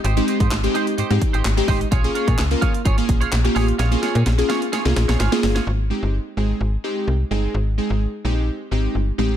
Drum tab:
HH |xxxxxxxxxxxxxxox|xxxxxxxxxxxxxxox|xxxxxxxxxxxxxxox|----------------|
CP |----x-------x---|----x-------x---|----------------|----------------|
SD |----o-------o---|----o-------o---|o-o-o-o-oooooooo|----------------|
BD |---o------o---o-|o--o--o-o-o-----|----------------|----------------|

HH |----------------|
CP |----------------|
SD |----------------|
BD |----------------|